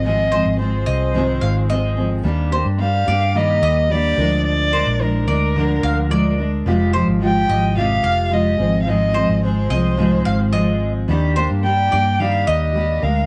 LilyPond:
<<
  \new Staff \with { instrumentName = "Mandolin" } { \time 4/4 \key ees \major \tempo 4 = 109 r8 c''16 r8. ees''8. r16 f''16 r16 ees''8. r16 | r8 c''16 r8. d''8. r16 ees''16 r4 r16 | r8 c''16 r8. d''8. r16 f''16 r16 d''8. r16 | r8 c''16 r8. ees''8. r16 f''16 r4 r16 |
r8 c''16 r8. ees''8. r16 f''16 r16 ees''8. r16 | r8 c''16 r8. d''8. r16 ees''16 r4 r16 | }
  \new Staff \with { instrumentName = "Violin" } { \time 4/4 \key ees \major ees''4 c''2~ c''8 r8 | r4 f''4 ees''4 d''4 | d''4 bes'2~ bes'8 r8 | r4 g''4 f''4 ees''8.~ ees''32 f''32 |
ees''4 c''2~ c''8 r8 | r4 g''4 f''8 ees''4 f''8 | }
  \new Staff \with { instrumentName = "Steel-string acoustic guitar" } { \time 4/4 \key ees \major <aes, ees f aes c' aes'>8 <f aes c' aes'>8 <f aes c' aes'>4 <aes, ees f aes c' aes'>4 <f aes c' aes'>8 <f aes c' aes'>8 | <ees g bes d' g'>8 <bes d' g'>8 <g bes d' g'>8 <bes d' g'>8 <ees g bes g'>4 <g bes d' g'>8 <d f aes d' bes'>8~ | <d f aes d' bes'>8 <aes d' bes'>8 <f aes d' bes'>8 <aes d' bes'>8 <d f aes d' bes'>4 <f aes d' bes'>8 <aes d' bes'>8 | <f, c f aes f' g'>8 <f aes f' g'>8 <f aes f' g'>8 <f aes f' g'>8 <f, c f aes f' g'>4 <f aes f' g'>8 <f aes c' aes'>8 |
<aes, ees f aes c' aes'>8 <f aes c' aes'>8 <f aes c' aes'>8 <f aes c' aes'>8 <aes, ees f aes c' aes'>4 <f aes c' aes'>4 | <ees g bes d' g'>8 <bes d' g'>8 <g bes d' g'>8 <bes d' g'>8 <ees g bes d' g'>4 <g bes d' g'>8 <aes d' bes'>8 | }
  \new Staff \with { instrumentName = "Fingered electric bass" } { \clef bass \time 4/4 \key ees \major aes,,8. aes,,8. c,4 aes,,4. | ees,8. g,8. g,4 ees,4 d,8~ | d,8. bes,,8. d,4 d,4. | f,,8. aes,,8. aes,,4 f,,4 aes,,8~ |
aes,,8. aes,,8. c,4 aes,,4. | ees,8. g,8. g,4 ees,4 d,8 | }
>>